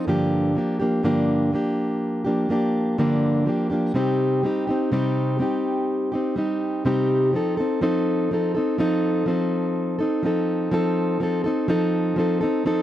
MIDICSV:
0, 0, Header, 1, 2, 480
1, 0, Start_track
1, 0, Key_signature, -2, "minor"
1, 0, Tempo, 967742
1, 39, Time_signature, 4, 2, 24, 8
1, 6360, End_track
2, 0, Start_track
2, 0, Title_t, "Steel-string acoustic guitar"
2, 0, Program_c, 0, 25
2, 33, Note_on_c, 0, 43, 57
2, 37, Note_on_c, 0, 50, 66
2, 39, Note_on_c, 0, 53, 66
2, 40, Note_on_c, 0, 58, 69
2, 43, Note_on_c, 0, 62, 61
2, 45, Note_on_c, 0, 67, 76
2, 268, Note_off_c, 0, 53, 0
2, 274, Note_on_c, 0, 53, 50
2, 275, Note_off_c, 0, 58, 0
2, 276, Note_off_c, 0, 43, 0
2, 278, Note_off_c, 0, 50, 0
2, 281, Note_off_c, 0, 62, 0
2, 281, Note_on_c, 0, 58, 45
2, 282, Note_off_c, 0, 67, 0
2, 287, Note_on_c, 0, 62, 53
2, 291, Note_on_c, 0, 67, 53
2, 388, Note_off_c, 0, 67, 0
2, 394, Note_on_c, 0, 67, 44
2, 395, Note_off_c, 0, 62, 0
2, 396, Note_off_c, 0, 53, 0
2, 400, Note_off_c, 0, 58, 0
2, 401, Note_on_c, 0, 62, 45
2, 405, Note_on_c, 0, 58, 41
2, 410, Note_on_c, 0, 53, 37
2, 512, Note_off_c, 0, 53, 0
2, 513, Note_on_c, 0, 43, 68
2, 515, Note_off_c, 0, 58, 0
2, 516, Note_on_c, 0, 50, 61
2, 517, Note_off_c, 0, 62, 0
2, 517, Note_off_c, 0, 67, 0
2, 518, Note_on_c, 0, 53, 67
2, 521, Note_on_c, 0, 58, 73
2, 523, Note_on_c, 0, 62, 72
2, 525, Note_on_c, 0, 67, 73
2, 748, Note_off_c, 0, 53, 0
2, 754, Note_on_c, 0, 53, 46
2, 755, Note_off_c, 0, 58, 0
2, 756, Note_off_c, 0, 43, 0
2, 757, Note_off_c, 0, 50, 0
2, 761, Note_off_c, 0, 62, 0
2, 761, Note_on_c, 0, 58, 53
2, 762, Note_off_c, 0, 67, 0
2, 767, Note_on_c, 0, 62, 57
2, 771, Note_on_c, 0, 67, 55
2, 1108, Note_off_c, 0, 67, 0
2, 1113, Note_on_c, 0, 67, 45
2, 1115, Note_off_c, 0, 62, 0
2, 1116, Note_off_c, 0, 53, 0
2, 1120, Note_off_c, 0, 58, 0
2, 1121, Note_on_c, 0, 62, 42
2, 1125, Note_on_c, 0, 58, 37
2, 1129, Note_on_c, 0, 53, 33
2, 1229, Note_off_c, 0, 53, 0
2, 1235, Note_off_c, 0, 58, 0
2, 1235, Note_on_c, 0, 53, 47
2, 1236, Note_off_c, 0, 67, 0
2, 1240, Note_off_c, 0, 62, 0
2, 1241, Note_on_c, 0, 58, 48
2, 1245, Note_on_c, 0, 62, 51
2, 1251, Note_on_c, 0, 67, 56
2, 1477, Note_off_c, 0, 53, 0
2, 1478, Note_on_c, 0, 43, 62
2, 1480, Note_off_c, 0, 58, 0
2, 1480, Note_on_c, 0, 50, 72
2, 1482, Note_off_c, 0, 62, 0
2, 1482, Note_on_c, 0, 53, 74
2, 1483, Note_off_c, 0, 67, 0
2, 1485, Note_on_c, 0, 58, 73
2, 1488, Note_on_c, 0, 62, 75
2, 1489, Note_on_c, 0, 67, 73
2, 1709, Note_off_c, 0, 53, 0
2, 1715, Note_off_c, 0, 58, 0
2, 1715, Note_on_c, 0, 53, 48
2, 1718, Note_off_c, 0, 43, 0
2, 1719, Note_off_c, 0, 50, 0
2, 1721, Note_on_c, 0, 58, 53
2, 1723, Note_off_c, 0, 62, 0
2, 1724, Note_off_c, 0, 67, 0
2, 1728, Note_on_c, 0, 62, 58
2, 1731, Note_on_c, 0, 67, 58
2, 1828, Note_off_c, 0, 67, 0
2, 1834, Note_off_c, 0, 62, 0
2, 1834, Note_on_c, 0, 67, 49
2, 1837, Note_off_c, 0, 53, 0
2, 1840, Note_off_c, 0, 58, 0
2, 1840, Note_on_c, 0, 62, 45
2, 1845, Note_on_c, 0, 58, 37
2, 1850, Note_on_c, 0, 53, 40
2, 1955, Note_on_c, 0, 48, 65
2, 1956, Note_off_c, 0, 53, 0
2, 1956, Note_off_c, 0, 67, 0
2, 1958, Note_on_c, 0, 55, 70
2, 1959, Note_off_c, 0, 62, 0
2, 1960, Note_off_c, 0, 58, 0
2, 1962, Note_on_c, 0, 60, 79
2, 1964, Note_on_c, 0, 63, 74
2, 1966, Note_on_c, 0, 67, 69
2, 2192, Note_off_c, 0, 55, 0
2, 2197, Note_off_c, 0, 48, 0
2, 2198, Note_off_c, 0, 60, 0
2, 2198, Note_on_c, 0, 55, 50
2, 2201, Note_off_c, 0, 63, 0
2, 2202, Note_off_c, 0, 67, 0
2, 2204, Note_on_c, 0, 60, 52
2, 2208, Note_on_c, 0, 63, 53
2, 2213, Note_on_c, 0, 67, 60
2, 2311, Note_off_c, 0, 67, 0
2, 2317, Note_on_c, 0, 67, 46
2, 2318, Note_off_c, 0, 55, 0
2, 2319, Note_off_c, 0, 63, 0
2, 2321, Note_off_c, 0, 60, 0
2, 2325, Note_on_c, 0, 63, 46
2, 2334, Note_on_c, 0, 60, 43
2, 2438, Note_off_c, 0, 60, 0
2, 2438, Note_off_c, 0, 67, 0
2, 2438, Note_on_c, 0, 48, 69
2, 2440, Note_off_c, 0, 63, 0
2, 2443, Note_on_c, 0, 55, 74
2, 2444, Note_on_c, 0, 60, 74
2, 2446, Note_on_c, 0, 63, 72
2, 2449, Note_on_c, 0, 67, 76
2, 2666, Note_off_c, 0, 55, 0
2, 2672, Note_off_c, 0, 60, 0
2, 2672, Note_on_c, 0, 55, 53
2, 2678, Note_off_c, 0, 63, 0
2, 2678, Note_on_c, 0, 60, 49
2, 2679, Note_off_c, 0, 48, 0
2, 2684, Note_off_c, 0, 67, 0
2, 2684, Note_on_c, 0, 63, 58
2, 2689, Note_on_c, 0, 67, 53
2, 3029, Note_off_c, 0, 67, 0
2, 3035, Note_off_c, 0, 55, 0
2, 3035, Note_on_c, 0, 67, 45
2, 3037, Note_off_c, 0, 63, 0
2, 3038, Note_off_c, 0, 60, 0
2, 3043, Note_on_c, 0, 63, 47
2, 3051, Note_on_c, 0, 60, 36
2, 3154, Note_on_c, 0, 55, 49
2, 3155, Note_off_c, 0, 60, 0
2, 3157, Note_off_c, 0, 67, 0
2, 3161, Note_off_c, 0, 63, 0
2, 3161, Note_on_c, 0, 60, 53
2, 3166, Note_on_c, 0, 63, 56
2, 3169, Note_on_c, 0, 67, 51
2, 3395, Note_off_c, 0, 55, 0
2, 3397, Note_off_c, 0, 60, 0
2, 3397, Note_on_c, 0, 48, 64
2, 3399, Note_off_c, 0, 63, 0
2, 3401, Note_on_c, 0, 55, 73
2, 3402, Note_off_c, 0, 67, 0
2, 3403, Note_on_c, 0, 60, 69
2, 3405, Note_on_c, 0, 63, 73
2, 3408, Note_on_c, 0, 67, 78
2, 3634, Note_off_c, 0, 55, 0
2, 3635, Note_off_c, 0, 60, 0
2, 3636, Note_on_c, 0, 53, 53
2, 3638, Note_off_c, 0, 48, 0
2, 3641, Note_on_c, 0, 60, 53
2, 3642, Note_off_c, 0, 63, 0
2, 3644, Note_off_c, 0, 67, 0
2, 3648, Note_on_c, 0, 63, 59
2, 3651, Note_on_c, 0, 69, 61
2, 3750, Note_off_c, 0, 69, 0
2, 3756, Note_on_c, 0, 69, 50
2, 3757, Note_off_c, 0, 53, 0
2, 3760, Note_off_c, 0, 60, 0
2, 3760, Note_off_c, 0, 63, 0
2, 3766, Note_on_c, 0, 63, 47
2, 3772, Note_on_c, 0, 60, 40
2, 3875, Note_off_c, 0, 60, 0
2, 3875, Note_on_c, 0, 53, 71
2, 3876, Note_off_c, 0, 63, 0
2, 3877, Note_off_c, 0, 69, 0
2, 3881, Note_on_c, 0, 60, 74
2, 3882, Note_on_c, 0, 63, 78
2, 3886, Note_on_c, 0, 69, 88
2, 4116, Note_off_c, 0, 53, 0
2, 4120, Note_off_c, 0, 60, 0
2, 4120, Note_off_c, 0, 63, 0
2, 4122, Note_off_c, 0, 69, 0
2, 4122, Note_on_c, 0, 53, 51
2, 4127, Note_on_c, 0, 60, 56
2, 4132, Note_on_c, 0, 63, 57
2, 4137, Note_on_c, 0, 69, 57
2, 4233, Note_off_c, 0, 69, 0
2, 4239, Note_on_c, 0, 69, 54
2, 4240, Note_off_c, 0, 53, 0
2, 4242, Note_off_c, 0, 63, 0
2, 4243, Note_off_c, 0, 60, 0
2, 4248, Note_on_c, 0, 63, 46
2, 4256, Note_on_c, 0, 60, 41
2, 4356, Note_off_c, 0, 60, 0
2, 4357, Note_on_c, 0, 53, 68
2, 4359, Note_off_c, 0, 69, 0
2, 4360, Note_off_c, 0, 63, 0
2, 4362, Note_on_c, 0, 60, 77
2, 4366, Note_on_c, 0, 63, 87
2, 4367, Note_on_c, 0, 69, 87
2, 4586, Note_off_c, 0, 53, 0
2, 4592, Note_on_c, 0, 53, 58
2, 4596, Note_off_c, 0, 60, 0
2, 4599, Note_off_c, 0, 63, 0
2, 4602, Note_on_c, 0, 60, 63
2, 4603, Note_off_c, 0, 69, 0
2, 4605, Note_on_c, 0, 63, 66
2, 4610, Note_on_c, 0, 69, 65
2, 4947, Note_off_c, 0, 69, 0
2, 4953, Note_on_c, 0, 69, 46
2, 4956, Note_off_c, 0, 53, 0
2, 4956, Note_off_c, 0, 63, 0
2, 4960, Note_off_c, 0, 60, 0
2, 4962, Note_on_c, 0, 63, 47
2, 4972, Note_on_c, 0, 60, 38
2, 5073, Note_on_c, 0, 53, 52
2, 5076, Note_off_c, 0, 60, 0
2, 5076, Note_off_c, 0, 69, 0
2, 5081, Note_off_c, 0, 63, 0
2, 5082, Note_on_c, 0, 60, 55
2, 5087, Note_on_c, 0, 63, 60
2, 5091, Note_on_c, 0, 69, 61
2, 5308, Note_off_c, 0, 53, 0
2, 5313, Note_off_c, 0, 60, 0
2, 5314, Note_on_c, 0, 53, 78
2, 5318, Note_off_c, 0, 63, 0
2, 5319, Note_on_c, 0, 60, 71
2, 5320, Note_off_c, 0, 69, 0
2, 5324, Note_on_c, 0, 63, 75
2, 5326, Note_on_c, 0, 69, 80
2, 5550, Note_off_c, 0, 53, 0
2, 5554, Note_off_c, 0, 60, 0
2, 5556, Note_on_c, 0, 53, 56
2, 5560, Note_on_c, 0, 60, 58
2, 5561, Note_off_c, 0, 63, 0
2, 5562, Note_off_c, 0, 69, 0
2, 5567, Note_on_c, 0, 63, 59
2, 5571, Note_on_c, 0, 69, 63
2, 5668, Note_off_c, 0, 69, 0
2, 5674, Note_on_c, 0, 69, 60
2, 5677, Note_off_c, 0, 53, 0
2, 5678, Note_off_c, 0, 63, 0
2, 5679, Note_off_c, 0, 60, 0
2, 5684, Note_on_c, 0, 63, 51
2, 5690, Note_on_c, 0, 60, 42
2, 5793, Note_off_c, 0, 60, 0
2, 5794, Note_on_c, 0, 53, 72
2, 5796, Note_off_c, 0, 63, 0
2, 5797, Note_off_c, 0, 69, 0
2, 5799, Note_on_c, 0, 60, 76
2, 5802, Note_on_c, 0, 63, 83
2, 5805, Note_on_c, 0, 69, 83
2, 6026, Note_off_c, 0, 53, 0
2, 6032, Note_on_c, 0, 53, 60
2, 6034, Note_off_c, 0, 60, 0
2, 6039, Note_off_c, 0, 63, 0
2, 6040, Note_on_c, 0, 60, 59
2, 6042, Note_off_c, 0, 69, 0
2, 6045, Note_on_c, 0, 63, 60
2, 6048, Note_on_c, 0, 69, 63
2, 6148, Note_off_c, 0, 69, 0
2, 6154, Note_on_c, 0, 69, 59
2, 6155, Note_off_c, 0, 53, 0
2, 6158, Note_off_c, 0, 63, 0
2, 6159, Note_off_c, 0, 60, 0
2, 6164, Note_on_c, 0, 63, 48
2, 6170, Note_on_c, 0, 60, 43
2, 6273, Note_off_c, 0, 60, 0
2, 6276, Note_off_c, 0, 69, 0
2, 6276, Note_on_c, 0, 53, 72
2, 6277, Note_off_c, 0, 63, 0
2, 6279, Note_on_c, 0, 60, 79
2, 6283, Note_on_c, 0, 63, 76
2, 6285, Note_on_c, 0, 69, 83
2, 6360, Note_off_c, 0, 53, 0
2, 6360, Note_off_c, 0, 60, 0
2, 6360, Note_off_c, 0, 63, 0
2, 6360, Note_off_c, 0, 69, 0
2, 6360, End_track
0, 0, End_of_file